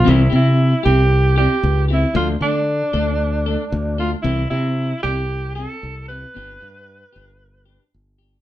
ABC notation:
X:1
M:4/4
L:1/8
Q:"Swing 16ths" 1/4=114
K:C
V:1 name="Alto saxophone"
E E2 G2 G2 E | F D6 F | E E2 G2 A2 B- | B6 z2 |]
V:2 name="Clean electric guitar"
[E,CEG] [CEG] z [CEG] z [CEG] z [CEG] | [F,A,DA] [A,DA] z [A,DA] z [A,DA] z [A,DA] | [E,CEG] [CEG] z [CEG] z [CEG] z [CEG] | [B,DG] [DG] z [DG] z [DG] z [DG] |]
V:3 name="Fingered electric bass" clef=bass
C,, C,2 C,,3 _D,,2 | D,, D,2 D,,3 D,,2 | C,, C,2 C,,3 C,,2 | G,,, G,,2 G,,,3 G,,,2 |]